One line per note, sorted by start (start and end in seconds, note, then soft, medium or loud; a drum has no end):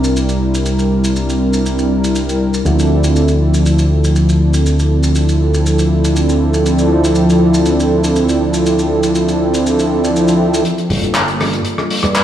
0.00 2.63 C2 medium
0.00 2.37 G3 medium
0.00 2.37 C4 medium
0.00 2.37 D4 medium
0.00 2.38 E4 medium
0.00 2.38 A#4 medium
0.04 shaker medium
0.16 shaker medium
0.29 shaker soft
0.55 shaker medium
0.66 shaker medium
0.79 shaker soft
1.04 shaker medium
1.16 shaker medium
1.30 shaker soft
1.53 shaker medium
1.66 shaker medium
1.79 shaker soft
2.04 shaker medium
2.15 shaker medium
2.29 shaker soft
2.54 shaker medium
2.64 10.63 D2 medium
2.64 6.62 F3 medium
2.64 6.62 C4 medium
2.64 6.62 D4 medium
2.64 6.62 E4 medium
2.64 6.63 A4 medium
2.64 shaker medium
2.79 shaker soft
3.04 shaker medium
3.16 shaker medium
3.28 shaker soft
3.54 shaker medium
3.66 shaker medium
3.79 shaker soft
4.04 shaker medium
4.16 shaker medium
4.29 shaker soft
4.54 shaker medium
4.66 shaker medium
4.79 shaker soft
5.03 shaker medium
5.15 shaker medium
5.29 shaker soft
5.54 shaker medium
5.66 shaker medium
5.79 shaker soft
6.05 shaker medium
6.16 shaker medium
6.29 shaker soft
6.54 shaker medium
6.64 10.62 F3 medium
6.64 10.62 C4 medium
6.64 10.62 D4 medium
6.64 10.63 E4 medium
6.64 10.63 A4 medium
6.64 shaker medium
6.79 shaker soft
7.04 shaker medium
7.15 shaker medium
7.30 shaker soft
7.54 shaker medium
7.66 shaker medium
7.80 shaker soft
8.04 shaker medium
8.16 shaker medium
8.29 shaker soft
8.54 shaker medium
8.66 shaker medium
8.79 shaker soft
9.03 shaker medium
9.15 shaker medium
9.29 shaker soft
9.54 shaker medium
9.66 shaker medium
9.79 shaker soft
10.04 shaker medium
10.16 shaker medium
10.28 shaker medium
10.54 shaker medium
10.65 closed hi-hat medium
10.78 closed hi-hat soft
10.90 10.99 G1 medium
10.90 11.05 G3 medium
10.90 11.05 A#3 medium
10.90 11.05 D4 medium
10.90 11.05 F4 medium
10.90 11.05 A4 loud
10.90 open hi-hat loud
11.03 11.59 G1 medium
11.03 closed hi-hat medium
11.15 clap loud
11.15 closed hi-hat medium
11.28 11.51 G3 medium
11.28 11.51 A#3 medium
11.28 11.51 D4 medium
11.28 11.52 F4 medium
11.28 11.52 A4 medium
11.28 closed hi-hat medium
11.40 cross-stick medium
11.40 open hi-hat loud
11.53 closed hi-hat medium
11.65 closed hi-hat medium
11.78 11.92 G3 medium
11.78 11.92 A#3 medium
11.78 11.92 D4 medium
11.78 11.92 F4 medium
11.78 11.93 A4 medium
11.78 cross-stick medium
11.90 open hi-hat loud
12.03 12.20 G2 medium
12.03 cross-stick medium
12.03 closed hi-hat medium
12.15 12.24 G3 medium
12.15 12.24 A#3 medium
12.15 12.24 D4 medium
12.15 12.24 F4 medium
12.15 12.24 C5 medium
12.15 clap loud
12.15 closed hi-hat medium